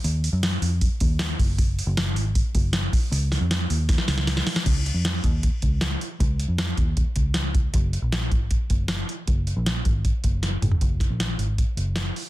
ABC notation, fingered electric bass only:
X:1
M:4/4
L:1/16
Q:1/4=156
K:Db
V:1 name="Fingered electric bass" clef=bass
E,,3 G,,3 F,,3 z E,,4 G,,,2- | G,,,3 G,,,3 A,,,3 z G,,,4 z2 | D,,3 F,,3 E,,3 z D,,4 z2 | D,,3 F,,3 E,,3 z D,,4 z2 |
D,,3 F,,3 E,,3 z D,,6 | G,,,3 B,,,3 A,,,3 z G,,,4 z2 | G,,,3 B,,,3 A,,,3 z G,,,4 G,,,2 | G,,,3 B,,,3 A,,,3 z G,,,4 z2 |]